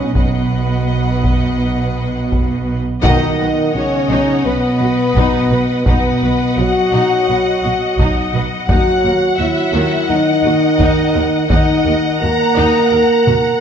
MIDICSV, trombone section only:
0, 0, Header, 1, 2, 480
1, 0, Start_track
1, 0, Tempo, 718563
1, 108, Time_signature, 4, 2, 24, 8
1, 2028, Tempo, 705882
1, 9214, End_track
2, 0, Start_track
2, 0, Title_t, "Trombone section"
2, 0, Program_c, 0, 61
2, 2029, Note_on_c, 0, 51, 88
2, 2481, Note_off_c, 0, 51, 0
2, 2516, Note_on_c, 0, 49, 58
2, 2983, Note_on_c, 0, 47, 63
2, 2991, Note_off_c, 0, 49, 0
2, 3938, Note_off_c, 0, 47, 0
2, 3946, Note_on_c, 0, 47, 61
2, 4425, Note_off_c, 0, 47, 0
2, 4425, Note_on_c, 0, 54, 61
2, 5629, Note_off_c, 0, 54, 0
2, 5854, Note_on_c, 0, 54, 65
2, 6316, Note_off_c, 0, 54, 0
2, 6345, Note_on_c, 0, 54, 57
2, 6827, Note_off_c, 0, 54, 0
2, 6830, Note_on_c, 0, 51, 67
2, 7776, Note_off_c, 0, 51, 0
2, 7784, Note_on_c, 0, 51, 63
2, 8262, Note_off_c, 0, 51, 0
2, 8274, Note_on_c, 0, 58, 66
2, 9214, Note_off_c, 0, 58, 0
2, 9214, End_track
0, 0, End_of_file